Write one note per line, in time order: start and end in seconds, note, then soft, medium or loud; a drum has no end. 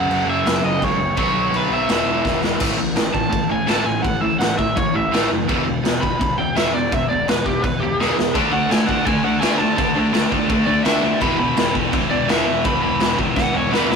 0.00 0.98 F#2 medium
0.00 0.99 C#3 loud
0.00 0.99 F#3 medium
0.00 0.30 F#5 medium
0.09 0.24 F#1 medium
0.09 crash medium
0.26 0.41 F#1 medium
0.30 0.65 E5 loud
0.45 0.60 F#1 medium
0.45 snare loud
0.45 crash medium
0.63 0.78 F#1 medium
0.63 0.84 D#5 medium
0.82 0.97 C#2 medium
0.82 1.17 C#5 medium
0.82 kick medium
0.82 crash medium
0.98 1.13 F#1 loud
1.17 1.32 B1 medium
1.17 1.88 B2 medium
1.17 1.88 F#3 loud
1.17 1.89 B3 loud
1.17 1.55 C#5 medium
1.17 kick loud
1.17 crash medium
1.33 1.48 B1 medium
1.51 1.67 B1 medium
1.51 crash medium
1.56 1.73 B4 medium
1.69 1.85 B1 medium
1.73 2.40 E5 medium
1.88 2.03 E1 medium
1.88 2.59 E2 medium
1.88 2.59 B2 loud
1.88 2.59 E3 medium
1.88 snare loud
1.88 crash medium
2.06 2.21 E1 medium
2.25 2.54 E1 loud
2.25 kick medium
2.25 snare medium
2.44 snare medium
2.60 2.75 A1 medium
2.60 2.76 A2 medium
2.60 2.77 E3 loud
2.60 2.78 A3 loud
2.60 kick loud
2.60 crash loud
2.60 crash medium
2.77 2.92 A1 medium
2.77 2.94 A2 medium
2.77 2.95 E3 medium
2.95 3.10 A1 medium
2.95 3.11 A2 medium
2.95 3.12 E3 medium
2.95 snare loud
2.95 crash medium
3.12 3.29 A1 medium
3.12 3.28 A2 medium
3.12 3.29 E3 medium
3.12 3.49 A5 medium
3.12 kick medium
3.30 3.47 A1 medium
3.30 3.47 A2 medium
3.30 3.48 E3 medium
3.30 kick loud
3.30 crash medium
3.49 3.64 A1 medium
3.49 3.65 A2 medium
3.49 3.66 E3 medium
3.49 3.69 G#5 medium
3.66 3.83 A1 medium
3.66 3.82 A2 medium
3.66 3.83 E3 medium
3.66 3.85 A3 loud
3.66 3.86 A5 medium
3.66 snare loud
3.66 crash medium
3.84 4.00 A1 loud
3.84 4.01 A2 medium
3.84 4.02 E3 medium
3.84 4.02 G#5 medium
4.02 4.19 A1 loud
4.02 4.20 A2 medium
4.02 4.20 E3 medium
4.02 4.21 F#5 medium
4.02 kick loud
4.02 crash medium
4.21 4.36 A1 medium
4.21 4.38 A2 medium
4.21 4.39 E3 medium
4.21 4.39 E5 medium
4.39 4.54 A1 medium
4.39 4.56 A2 medium
4.39 4.57 E3 medium
4.39 4.57 F#5 medium
4.39 snare loud
4.39 crash medium
4.58 4.73 A1 medium
4.58 4.74 A2 medium
4.58 4.74 E3 medium
4.58 4.76 E5 medium
4.58 kick medium
4.75 4.91 A1 medium
4.75 4.92 A2 medium
4.75 4.92 E3 medium
4.75 4.95 C#5 medium
4.75 kick loud
4.75 crash medium
4.94 5.09 A1 medium
4.94 5.10 A2 medium
4.94 5.10 E3 medium
4.94 5.30 E5 medium
5.11 5.27 A1 medium
5.11 5.29 A2 medium
5.11 5.29 E3 medium
5.11 5.29 A3 loud
5.11 snare loud
5.11 crash medium
5.30 5.45 F#1 medium
5.30 5.46 A2 medium
5.30 5.47 E3 medium
5.48 5.63 E1 loud
5.48 5.65 E2 medium
5.48 5.65 B2 loud
5.48 5.65 E3 loud
5.48 kick loud
5.48 crash medium
5.66 5.80 E1 loud
5.66 5.82 E2 medium
5.66 5.82 B2 medium
5.83 5.98 E1 medium
5.83 6.00 E2 medium
5.83 6.00 B2 medium
5.83 snare loud
5.83 crash medium
6.01 6.17 E1 medium
6.01 6.18 E2 medium
6.01 6.18 B2 medium
6.01 6.36 B5 medium
6.01 kick medium
6.19 6.35 E1 medium
6.19 6.36 E2 medium
6.19 6.36 B2 medium
6.19 kick loud
6.19 crash medium
6.36 6.51 E1 medium
6.36 6.54 E2 medium
6.36 6.54 B2 medium
6.36 6.55 G5 medium
6.55 6.69 E1 loud
6.55 6.72 E2 medium
6.55 6.73 B2 medium
6.55 6.73 E3 loud
6.55 6.73 E5 medium
6.55 snare loud
6.55 crash medium
6.73 6.87 E1 medium
6.73 6.89 E2 medium
6.73 6.90 B2 loud
6.73 6.93 D5 loud
6.92 7.06 E1 loud
6.92 7.07 E2 medium
6.92 7.08 B2 medium
6.92 7.09 E5 loud
6.92 kick loud
6.92 crash medium
7.09 7.23 E1 medium
7.09 7.26 E2 medium
7.09 7.26 B2 medium
7.09 7.26 D5 medium
7.26 7.41 E1 medium
7.26 7.44 E2 medium
7.26 7.45 B2 medium
7.26 7.45 B4 medium
7.26 snare loud
7.26 crash medium
7.46 7.60 E1 medium
7.46 7.61 E2 medium
7.46 7.62 B2 medium
7.46 7.63 G4 medium
7.46 kick medium
7.62 7.77 E1 medium
7.62 7.80 E2 medium
7.62 7.80 B2 medium
7.62 7.80 B4 medium
7.62 kick loud
7.62 crash medium
7.79 7.94 E1 medium
7.79 7.98 E2 medium
7.79 7.97 B2 medium
7.79 7.98 G4 loud
7.97 8.12 E1 medium
7.97 8.16 E2 medium
7.97 8.16 B2 medium
7.97 8.17 E3 loud
7.97 8.34 G#4 loud
7.97 snare medium
8.17 8.31 E2 loud
8.17 8.33 E2 medium
8.17 8.33 B2 medium
8.17 snare medium
8.35 8.49 D2 medium
8.35 8.50 D3 medium
8.35 8.50 A3 medium
8.35 8.52 D4 loud
8.35 kick loud
8.35 crash medium
8.52 8.66 D2 medium
8.52 8.68 D3 medium
8.52 8.68 A3 medium
8.52 8.71 D4 medium
8.52 8.71 F#5 loud
8.70 8.84 D2 medium
8.70 8.86 D3 medium
8.70 8.86 A3 medium
8.70 8.89 D4 medium
8.70 8.87 G#5 medium
8.70 snare loud
8.70 crash medium
8.87 9.03 D2 medium
8.87 9.04 D3 medium
8.87 9.04 A3 medium
8.87 9.05 D4 medium
8.87 9.05 F#5 loud
8.87 kick medium
9.05 9.21 D2 medium
9.05 9.22 D3 medium
9.05 9.22 A3 medium
9.05 9.24 D4 loud
9.05 9.24 G#5 medium
9.05 kick loud
9.05 crash medium
9.24 9.38 D2 medium
9.24 9.40 D3 medium
9.24 9.40 A3 medium
9.24 9.41 D4 medium
9.24 9.40 F#5 loud
9.40 9.56 D2 medium
9.40 9.58 D3 medium
9.40 9.58 A3 loud
9.40 9.59 D4 loud
9.40 9.58 G#5 loud
9.40 snare loud
9.40 crash medium
9.58 9.74 D2 medium
9.58 9.75 D3 medium
9.58 9.76 A3 medium
9.58 9.77 D4 medium
9.58 10.28 A5 medium
9.76 9.92 D2 loud
9.76 9.93 D3 medium
9.76 9.93 A3 medium
9.76 9.95 D4 loud
9.76 kick loud
9.76 crash medium
9.95 10.10 D2 medium
9.95 10.11 D3 medium
9.95 10.12 A3 medium
9.95 10.13 D4 medium
10.13 10.28 D2 loud
10.13 10.29 D3 medium
10.13 10.30 A3 medium
10.13 10.30 D4 medium
10.13 snare loud
10.13 crash medium
10.31 10.46 D2 medium
10.31 10.47 D3 medium
10.31 10.48 A3 medium
10.31 10.48 D4 loud
10.31 kick medium
10.49 10.63 D2 medium
10.49 10.65 D3 medium
10.49 10.66 A3 medium
10.49 10.66 D4 loud
10.49 kick loud
10.49 crash medium
10.65 10.81 D2 loud
10.65 10.83 D3 medium
10.65 10.83 A3 medium
10.65 10.83 D4 medium
10.65 10.83 D5 loud
10.84 10.99 D2 loud
10.84 11.00 D3 medium
10.84 11.01 A3 medium
10.84 11.02 D4 loud
10.84 11.19 E5 loud
10.84 snare loud
10.84 crash medium
11.02 11.18 D2 medium
11.02 11.18 D3 medium
11.02 11.19 A3 medium
11.02 11.20 D4 medium
11.21 11.36 E1 medium
11.21 11.38 E2 loud
11.21 11.38 B2 loud
11.21 11.38 E3 loud
11.21 11.38 B5 loud
11.21 kick loud
11.21 crash medium
11.39 11.53 E1 medium
11.39 11.55 E2 medium
11.39 11.55 B2 medium
11.39 11.58 E3 loud
11.39 11.74 B5 loud
11.57 11.71 E1 medium
11.57 11.73 E2 medium
11.57 11.73 B2 medium
11.57 11.74 E3 medium
11.57 snare loud
11.57 crash medium
11.74 11.89 E1 medium
11.74 11.91 E2 medium
11.74 11.90 B2 medium
11.74 11.93 E3 medium
11.74 kick medium
11.92 12.07 E1 medium
11.92 12.08 E2 medium
11.92 12.09 B2 medium
11.92 12.10 E3 loud
11.92 kick loud
11.92 crash medium
12.10 12.25 E1 medium
12.10 12.27 E2 medium
12.10 12.27 B2 medium
12.10 12.29 E3 medium
12.10 12.28 D5 loud
12.28 12.43 E1 medium
12.28 12.45 E2 loud
12.28 12.45 B2 medium
12.28 12.45 E3 loud
12.28 12.64 E5 medium
12.28 snare loud
12.28 crash medium
12.46 12.61 E1 loud
12.46 12.62 E2 medium
12.46 12.62 B2 medium
12.46 12.64 E3 medium
12.64 12.79 E1 loud
12.64 12.81 E2 medium
12.64 12.81 B2 medium
12.64 12.82 E3 loud
12.64 12.82 B5 loud
12.64 kick loud
12.64 crash medium
12.82 12.96 E1 medium
12.82 12.99 E2 medium
12.82 12.99 B2 medium
12.82 13.00 E3 medium
12.82 13.17 B5 loud
13.00 13.15 E1 medium
13.00 13.16 E2 medium
13.00 13.16 B2 medium
13.00 13.18 E3 loud
13.00 snare loud
13.00 crash medium
13.19 13.33 E1 medium
13.19 13.34 E2 medium
13.19 13.34 B2 medium
13.19 13.36 E3 medium
13.19 kick medium
13.36 13.50 E1 medium
13.36 13.52 E2 medium
13.36 13.52 B2 medium
13.36 13.54 E3 loud
13.36 13.54 F#5 loud
13.36 kick loud
13.36 snare medium
13.53 13.67 E1 medium
13.53 13.70 E2 medium
13.53 13.70 B2 medium
13.53 13.71 E3 medium
13.53 13.73 C#5 loud
13.71 13.86 E1 loud
13.71 13.88 E2 medium
13.71 13.88 B2 loud
13.71 13.89 E3 loud
13.71 13.90 B4 medium
13.71 snare loud
13.89 13.96 E1 loud
13.89 13.96 E2 medium
13.89 13.96 B2 medium
13.89 13.96 E3 loud
13.89 13.96 B4 loud
13.89 snare loud